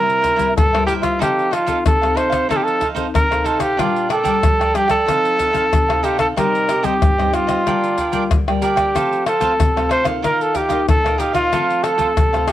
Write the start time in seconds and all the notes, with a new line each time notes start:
Already playing: C3 G3 A#3 E4 A#4 C5 E5
0.10 pandeiro, shaker
0.21 E4 A#4 C5 E5, pandeiro, shaker, surdo
0.36 G3 A#3 E4 A#4 C5 E5, pandeiro, shaker, surdo
0.57 G2 A4, pandeiro, tamborim, shaker, surdo
0.73 G3 A#3 E4 A#4 C5 E5, pandeiro, tamborim, shaker
0.86 E4 G4 A#4 C5 E5, pandeiro, shaker
1.02 F4 A#4 C5 E5, pandeiro, tamborim, shaker, surdo
1.19 F3 C4 D#4 G4 A4 C5 F5, pandeiro, tamborim, shaker, surdo
1.39 pandeiro, shaker
1.51 D#4 F4 A4 C5 F5, pandeiro, tamborim, shaker
1.66 C4 D#4 A4 C5 F5, pandeiro, shaker, surdo
1.86 C3 A4, pandeiro, tamborim, shaker, surdo
2.01 C4 D#4 A4 C5 F5, pandeiro, tamborim, shaker
2.15 D#4 A4 C5 F5, pandeiro, tamborim
2.30 A4 C5 F5, pandeiro, tamborim, shaker, surdo
2.49 F3 C4 D#4 A4 C5 F5, pandeiro, tamborim, shaker, surdo
2.56 G4
2.64 A4, pandeiro, shaker
2.80 D#4 A4 C5 F5, pandeiro, surdo
2.94 C4 D#4 A4 C5 F5, pandeiro, shaker, surdo
3.14 C3 A#4, pandeiro, tamborim, shaker, surdo
3.31 C4 D#4 A4 C5 F5, pandeiro, tamborim, shaker
3.44 D#4 A4 C5 F5, pandeiro, shaker
3.59 G4 A4 C5 F5, pandeiro, tamborim, shaker, surdo
3.77 A#2 G3 D4 F4 A#4 D5 G5, pandeiro, tamborim, shaker, surdo
3.96 pandeiro, shaker
4.09 D4 A4 A#4 D5 G5, pandeiro, tamborim
4.23 G3 D4 F4 A#4 D5 G5, pandeiro, shaker, surdo
4.43 F3, pandeiro, tamborim, shaker, surdo
4.59 A#4 D5 G5, pandeiro, tamborim, shaker
4.74 G3 D4 F4 G4 A#4 D5 G5, pandeiro, tamborim, shaker
4.88 A4 A#4 D5 G5, pandeiro, tamborim, shaker, surdo
5.06 F3 C4 D#4 A4 C5 F5, pandeiro, tamborim, shaker, surdo
5.25 pandeiro, shaker
5.37 D#4 A4 C5 F5, pandeiro, shaker, surdo
5.53 C4 D#4 A4 C5 F5, pandeiro, shaker, surdo
5.72 C3, pandeiro, tamborim, shaker, surdo
5.88 C4 D#4 A4 C5 F5, pandeiro, tamborim, shaker
6.03 D#4 G4 A4 C5 F5, pandeiro, shaker
6.18 A4 C5 F5, pandeiro, tamborim, shaker, surdo
6.36 C3 G3 C4 D#4 G4 A#4 C5 D#5, pandeiro, tamborim, shaker, surdo
6.55 pandeiro, shaker
6.68 D#4 G4 C5 D#5, pandeiro, tamborim, shaker
6.83 G3 C4 D#4 G4 C5 D#5, pandeiro, shaker, surdo
7.02 G2, pandeiro, tamborim, shaker, surdo
7.18 G3 C4 D#4 G4 C5 D#5, pandeiro, tamborim, shaker
7.33 D#4 F4 G4 C5 D#5, pandeiro, tamborim, shaker
7.47 G4 C5 D#5, pandeiro, tamborim, shaker, surdo
7.66 D3 G3 A#3 D4 F4 A#4 D5 G5, pandeiro, tamborim, shaker, surdo
7.84 pandeiro, shaker
7.98 D4 A#4 D5 G5, pandeiro, shaker, surdo
8.12 G3 A#3 D4 F4 A#4 D5 G5, pandeiro, shaker, surdo
8.31 D3, pandeiro, tamborim, shaker, surdo
8.48 G3 A#3 F4 A#4 D5 G5, pandeiro, tamborim, shaker
8.62 D4 G4 A#4 D5 G5, pandeiro, shaker
8.76 A#4 D5 G5, pandeiro, tamborim, shaker, surdo
8.95 F3 A3 C4 F4 A4 C5 F5, pandeiro, tamborim, shaker, surdo
9.12 pandeiro, shaker
9.26 F4 A4 C5 F5, pandeiro, tamborim
9.40 A3 C4 F4 A4 C5 F5, pandeiro, shaker, surdo
9.59 C3, pandeiro, tamborim, shaker, surdo
9.76 A3 C4 F4 A4 C5 F5, pandeiro, tamborim, shaker
9.89 F4 A4 C5 F5, pandeiro, tamborim
10.04 A#3 D#4 F4 A4 C5 F5, pandeiro, tamborim, shaker, surdo
10.22 D#3 F4 A#4 D#5 F5, pandeiro, tamborim, shaker, surdo
10.41 A4, pandeiro, shaker
10.54 F4 G4 A#4 D#5 F5, pandeiro, shaker, surdo
10.69 A#3 D#4 F4 A#4 D#5 F5, pandeiro, shaker, surdo
10.88 A#2 A4, pandeiro, tamborim, shaker, surdo
11.04 A#3 D#4 F4 A#4 D#5 F5, pandeiro, tamborim, shaker
11.18 F4 G4 A#4 D#5 F5, pandeiro, shaker
11.33 F4 A#4 D#5 F5, pandeiro, tamborim, shaker, surdo
11.52 F3 A3 C4 F4 A4 C5 F5, pandeiro, tamborim, shaker, surdo
11.70 pandeiro, shaker
11.83 F4 A4 C5 F5, pandeiro, tamborim, shaker
11.98 A3 C4 F4 A4 C5 F5, pandeiro, shaker, surdo
12.17 C3, pandeiro, tamborim, shaker, surdo
12.33 A3 C4 F4 A4 C5 F5, pandeiro, tamborim, shaker
12.47 F4 G4 A4 C5 F5, pandeiro, tamborim, shaker